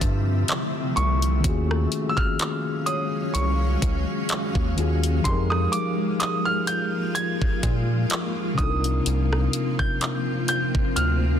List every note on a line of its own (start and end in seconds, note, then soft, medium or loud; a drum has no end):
0.00 0.44 G2 loud
0.00 1.40 C3 medium
0.00 1.38 D3 medium
0.00 1.40 F3 medium
0.00 1.42 A3 medium
0.00 1.39 C4 medium
0.00 1.40 E4 medium
0.00 1.42 F4 medium
0.00 1.43 G4 medium
0.00 1.40 E5 medium
0.00 0.45 A6 loud
0.00 kick loud
0.00 closed hi-hat medium
0.48 clap loud
0.48 closed hi-hat medium
0.96 1.46 C2 medium
0.96 2.06 C#6 medium
0.96 closed hi-hat soft
1.22 closed hi-hat medium
1.40 4.71 D#3 medium
1.40 4.72 A#3 medium
1.40 4.73 C#4 medium
1.44 1.87 D#2 loud
1.44 5.21 F#3 medium
1.44 8.54 G#3 medium
1.44 5.21 C#4 medium
1.44 4.74 F4 medium
1.44 4.75 F#4 medium
1.44 5.21 F5 medium
1.44 kick medium
1.44 closed hi-hat medium
1.49 4.76 G#4 medium
1.71 cross-stick medium
1.92 closed hi-hat medium
2.09 2.17 E6 medium
2.17 2.89 F6 loud
2.17 kick loud
2.39 clap loud
2.39 closed hi-hat medium
2.86 4.77 C#5 medium
2.86 3.36 D#6 medium
2.86 closed hi-hat medium
3.34 3.77 C2 medium
3.34 4.73 C#6 medium
3.34 closed hi-hat medium
3.82 4.05 C#2 loud
3.82 kick loud
3.82 closed hi-hat medium
4.29 clap loud
4.29 closed hi-hat medium
4.55 4.75 D#2 medium
4.55 kick medium
4.75 5.20 D#2 loud
4.75 5.24 D#3 medium
4.75 5.25 A#3 medium
4.75 5.25 C#4 medium
4.75 5.26 F4 medium
4.75 5.26 F#4 medium
4.75 closed hi-hat soft
4.80 5.27 G#4 medium
5.04 closed hi-hat medium
5.21 8.52 F3 medium
5.21 8.54 D#4 medium
5.21 5.51 C6 medium
5.25 5.68 F2 loud
5.25 11.39 F3 medium
5.25 11.39 A#3 medium
5.25 8.55 F4 medium
5.25 8.55 G4 medium
5.25 8.56 G#4 medium
5.25 kick loud
5.25 closed hi-hat medium
5.30 8.57 A#4 medium
5.50 5.73 D#6 medium
5.50 cross-stick medium
5.72 6.21 D6 medium
5.72 closed hi-hat medium
6.20 6.44 D#6 medium
6.20 clap loud
6.20 closed hi-hat medium
6.45 6.50 F6 loud
6.67 7.17 G6 loud
6.67 closed hi-hat medium
7.15 8.06 G#6 loud
7.15 closed hi-hat medium
7.42 kick medium
7.63 8.06 A#2 medium
7.63 kick loud
7.63 closed hi-hat medium
8.10 clap loud
8.10 closed hi-hat medium
8.54 11.39 C3 medium
8.54 11.39 C4 medium
8.54 11.39 D4 medium
8.54 9.83 D#6 loud
8.59 9.01 C2 loud
8.59 11.39 C4 medium
8.59 11.39 D#4 medium
8.59 11.39 F4 medium
8.59 kick loud
8.59 closed hi-hat soft
8.63 8.68 A4 medium
8.70 11.39 A#4 medium
8.84 closed hi-hat medium
9.06 9.49 C2 loud
9.06 closed hi-hat medium
9.33 cross-stick medium
9.53 closed hi-hat medium
9.79 10.47 G6 loud
9.79 kick loud
10.01 clap loud
10.01 closed hi-hat medium
10.48 10.98 G6 loud
10.48 closed hi-hat medium
10.75 kick loud
10.96 11.39 D2 medium
10.96 11.39 F6 medium
10.96 closed hi-hat medium